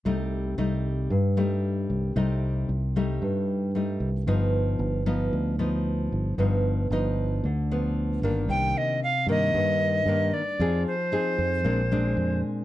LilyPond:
<<
  \new Staff \with { instrumentName = "Recorder" } { \time 4/4 \key c \dorian \tempo 4 = 114 r1 | r1 | r1 | r1 |
\key c \minor g''8 ees''8 f''8 ees''2 d''8~ | d''8 c''2. r8 | }
  \new Staff \with { instrumentName = "Nylon-string guitar" } { \time 4/4 \key c \dorian << { <g a ees'>4 <g a ees'>4 r8 <g a ees'>4. | <g a ees'>4 r8 <g a ees'>4. <g a ees'>8 r8 | <f b ees'>4. <f b ees'>4 <f b ees'>4. | <f b ees'>4 <f b ees'>4 r8 <f b>4 <ees bes d'>8~ |
\key c \minor <ees bes d'>4 r8 <ees bes>4. <ees bes d'>8 r8 | <c' ees' aes'>8 r8 <c' ees' aes'>4 <aes c' d'>8 <aes c' d'>4. | } \\ { c2 g,2 | c2 g,2 | g,2 r2 | g,2 d2 |
c2 g,2 | f2 bes,2 | } >> }
  \new Staff \with { instrumentName = "Fingered electric bass" } { \clef bass \time 4/4 \key c \dorian c,4 c,4 g,4. c,8 | c,4 c,4 g,4. c,8 | g,,4 g,,4 d,4. g,,8 | g,,4 g,,4 d,4. g,,8 |
\key c \minor c,8 r4 g,8 g,4 g,8 r8 | f,8 r4 f,8 bes,,4 f,8 r8 | }
>>